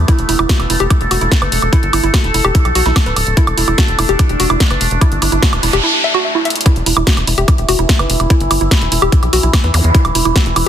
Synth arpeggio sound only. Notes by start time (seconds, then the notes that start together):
0.08 E4
0.29 E4
0.39 E4
0.49 F#4
0.70 E4
0.80 G4
0.91 E4
1.11 F#4
1.21 E4
1.42 B4
1.73 E4
1.93 E4
2.03 E4
2.14 F#4
2.34 E4
2.45 G4
2.55 E4
2.75 F#4
2.86 E4
3.06 B4
3.37 E4
3.58 E4
3.68 E4
3.78 F#4
3.99 E4
4.09 G4
4.19 E4
4.40 F#4
4.50 E4
4.71 B4
5.01 E4
5.22 E4
5.32 E4
5.42 F#4
5.63 E4
5.73 G4
5.84 E4
6.04 E5
6.14 F#4
6.25 E5
6.35 E4
6.45 E5
6.66 E4
6.86 E4
6.97 E4
7.07 F#4
7.28 E4
7.38 G4
7.48 E4
7.69 F#4
7.79 E4
7.99 B4
8.30 E4
8.51 E4
8.61 E4
8.71 F#4
8.92 E4
9.02 G4
9.12 E4
9.33 F#4
9.43 E4
9.64 B4
9.95 E4
10.15 E4
10.25 E4
10.36 F#4
10.56 E4